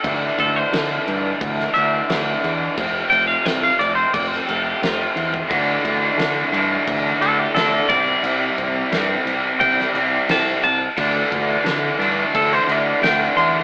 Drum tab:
CC |x-x-x-x-x-x-x-x-|x-x-x-x-x-x-x-x-|x-x-x-x-x-x-x-x-|x-x-x-x-x-x-x-x-|
SD |----o----o--o---|----o----o--o---|----o-------o---|----o----o--o---|
BD |o-o-----o-------|o-------o------o|o-o-----o-----o-|--o-----o-------|

CC |x-x-x-x-x-x-x-x-|
SD |----o-------o---|
BD |o-o-----o-------|